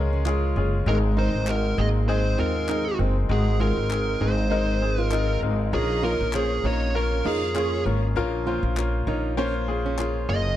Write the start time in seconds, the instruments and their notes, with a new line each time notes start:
Already playing: upright bass C#2, grand piano G#2 G#3 C#4 F4 G#4 A#4
0.13 steel-string acoustic guitar C#4
0.26 grand piano G#3 C#4 F4 G#4, steel-string acoustic guitar F4, clap
0.56 upright bass F#1, grand piano G#3 C#4 F4 G#4
0.86 upright bass G#1, grand piano G#2 D#3 G#3 C4 D#4 G#4, lead electric guitar A#4
1.17 grand piano G#3 C4 D#4 A#4, steel-string acoustic guitar D#4, lead electric guitar C5
1.34 upright bass G#1
1.47 grand piano G#3 C4 D#4 F#4, lead electric guitar A#4, clap
1.78 upright bass G#1, grand piano G#3 C4 D#4 G#4, steel-string acoustic guitar A#3, lead electric guitar D#5
2.08 grand piano G#3 C4 D#4 G#4, lead electric guitar C5
2.38 upright bass D#2, grand piano G#3 C4 D#4 F4, steel-string acoustic guitar C4, lead electric guitar A#4
2.69 grand piano G#3 C4 D#4 G#4, steel-string acoustic guitar D#4, clap
2.99 upright bass F#1, grand piano G#3 C4 D#4 A#4, steel-string acoustic guitar C4
3.29 upright bass G#1, grand piano G#2 D#3 G#3 C4 D#4 F#4, lead electric guitar G#4
3.60 grand piano G#3 C4 D#4 G#4, steel-string acoustic guitar F4, lead electric guitar A#4
3.77 upright bass G#1
3.90 grand piano G#3 C4 D#4 G#4, clap
4.20 upright bass G#1, grand piano G#3 C4 D#4 G#4, steel-string acoustic guitar D#4, lead electric guitar C5
4.50 grand piano G#3 C4 D#4 A#4, steel-string acoustic guitar D#4
4.82 grand piano G#3 C4 D#4 G#4
4.98 steel-string acoustic guitar F4, lead electric guitar A#4
5.11 grand piano G#3 C4 D#4 F4, steel-string acoustic guitar D#4, clap
5.42 upright bass G#1, grand piano G#3 C4 D#4 A#4
5.72 upright bass A#1, grand piano A#2 F3 A#3 C#4 F4 A#4, violin section D#4 D#5, lead electric guitar G#4
6.03 grand piano A#3 C#4 F4 A#4, steel-string acoustic guitar F4, lead electric guitar A#4
6.21 upright bass A#1
6.33 grand piano A#3 C#4 F4 C5, violin section C#4 C#5, lead electric guitar G#4, clap
6.63 upright bass A#1, grand piano A#3 C#4 F4 A#4, steel-string acoustic guitar C#4, violin section D#4 D#5, lead electric guitar C#5
6.94 grand piano A#3 C#4 F4 A#4, violin section C#4 C#5, lead electric guitar A#4
7.25 upright bass F2, grand piano A#3 C#4 F4 A#4, steel-string acoustic guitar D#4, violin section F4 F5, lead electric guitar G#4
7.55 grand piano A#3 C#4 F4 G#4, violin section C#4 C#5, steel-string acoustic guitar F4, clap
7.86 upright bass G#1, grand piano A#3 C#4 F4 A#4, steel-string acoustic guitar C#4
8.16 upright bass A#1, grand piano A#2 F3 A#3 C#4 F4 A#4
8.47 grand piano A#3 C#4 F4 C5, steel-string acoustic guitar F4
8.63 upright bass A#1
8.77 grand piano A#3 C#4 F4 A#4, clap
9.07 upright bass A#1, grand piano A#3 C#4 F4 C#5, steel-string acoustic guitar D#4
9.37 grand piano A#3 C#4 F4 C5, steel-string acoustic guitar C#4
9.68 grand piano A#3 C#4 F4 G#4
9.86 steel-string acoustic guitar C#4
9.98 grand piano A#3 C#4 F4 G#4, steel-string acoustic guitar F4, clap
10.29 upright bass F#1, grand piano A#3 C#4 F4 G#4, lead electric guitar D#5